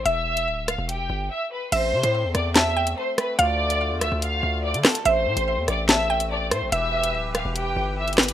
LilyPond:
<<
  \new Staff \with { instrumentName = "Violin section" } { \time 4/4 \key a \minor \tempo 4 = 144 <e'' e'''>4. <f'' f'''>8 <g' g''>4 <e'' e'''>8 <b' b''>8 | <c'' c'''>4. <d'' d'''>8 <e'' e'''>4 <c'' c'''>8 <b' b''>8 | <d'' d'''>4. <e'' e'''>8 <f'' f'''>4 <d'' d'''>8 <a' a''>8 | <c'' c'''>4. <d'' d'''>8 <e'' e'''>4 <d'' d'''>8 <c'' c'''>8 |
<e'' e'''>4. <f'' f'''>8 <g' g''>4 <e'' e'''>8 <b' b''>8 | }
  \new Staff \with { instrumentName = "Synth pluck" } { \time 4/4 \key a \minor e''1 | e''4 r4 a''8 g''4. | f''1 | e''4 r4 a''8 g''4. |
e''1 | }
  \new Staff \with { instrumentName = "Accordion" } { \time 4/4 \key a \minor r1 | c'1 | <d f'>1 | c'1 |
<e g' b'>1 | }
  \new Staff \with { instrumentName = "Accordion" } { \time 4/4 \key a \minor r1 | a1~ | a1 | a1 |
r1 | }
  \new Staff \with { instrumentName = "808-style bass" } { \clef bass \time 4/4 \key a \minor e,,4 d,,8. e,,8 f,,16 g,,8 r4 | a,,8 c16 a,8 e,16 e,4. r4 | d,4~ d,16 e,16 d,16 d,8. d,8. d16 r8 | a,,8 a,16 a,,8 e,16 a,,2 a,16 a,,16 |
e,,4 d,,8. e,,8 f,,16 g,,4. | }
  \new DrumStaff \with { instrumentName = "Drums" } \drummode { \time 4/4 hh8. hh16 r8 <hh ss>8 hh4 r4 | <cymc hh>8. hh16 r8 <hh ss>8 <hc hh sn>8. hh16 r8 <hh ss>8 | hh8. hh16 r8 <hh ss>8 hh4 r16 hh16 <hc hh hho ss sn>16 hh16 | hh8. hh16 r8 <hh ss>8 <hc hh sn>8. hh16 r8 <hh ss>8 |
hh8. hh16 r8 <hh ss>8 hh4 r16 hh32 hh32 <hc hh hho ss sn>32 hh32 hh16 | }
>>